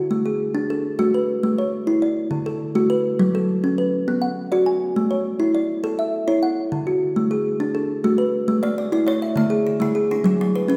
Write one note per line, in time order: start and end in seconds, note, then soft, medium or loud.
0.00 0.26 F#4 medium
0.11 0.40 A3 medium
0.26 0.70 G#4 medium
0.55 0.84 D4 medium
0.70 1.14 A4 medium
0.99 1.29 A3 medium
0.99 1.43 F#4 medium
1.14 1.58 B4 medium
1.43 1.73 A3 medium
1.58 2.03 C#5 medium
1.87 2.17 E4 medium
2.02 2.46 D5 medium
2.31 2.61 D3 medium
2.46 2.91 A4 medium
2.75 3.05 A3 medium
2.75 3.20 F#4 medium
2.90 3.34 B4 medium
3.19 3.49 F#3 medium
3.35 3.79 A4 medium
3.64 3.93 C#4 medium
3.78 4.23 B4 medium
4.08 4.37 B3 medium
4.22 4.66 F#5 medium
4.52 4.82 F#4 medium
4.52 4.96 D5 medium
4.66 5.11 G#5 medium
4.96 5.26 A3 medium
5.11 5.55 C#5 medium
5.40 5.69 E4 medium
5.55 5.99 D5 medium
5.84 6.14 A4 medium
5.99 6.43 E5 medium
6.28 6.58 E4 medium
6.28 6.72 C#5 medium
6.43 6.87 F#5 medium
6.72 7.02 D3 medium
6.87 7.31 F#4 medium
7.16 7.46 A3 medium
7.31 7.75 G#4 medium
7.60 7.90 D4 medium
7.75 8.19 A4 medium
8.04 8.34 A3 medium
8.04 8.49 F#4 medium
8.18 8.63 B4 medium
8.48 8.78 A3 medium
8.63 8.93 A3 medium
8.63 9.05 D5 medium
8.78 8.92 D5 medium
8.92 9.22 E4 medium
8.92 9.37 D5 medium
9.07 9.37 C#5 medium
9.07 9.51 D5 medium
9.22 9.36 E5 medium
9.36 9.66 D3 medium
9.36 9.52 A3 medium
9.36 9.66 E5 medium
9.50 9.94 G#4 medium
9.67 10.10 G#4 medium
9.80 10.11 D3 medium
9.80 10.10 A3 medium
9.80 10.10 E4 medium
9.95 10.39 G#4 medium
10.11 10.40 D4 medium
10.11 10.55 E4 medium
10.24 10.54 F#3 medium
10.24 10.55 G#4 medium
10.41 10.70 F#3 medium
10.56 10.68 B4 medium
10.68 10.77 C#4 medium
10.68 10.77 B4 medium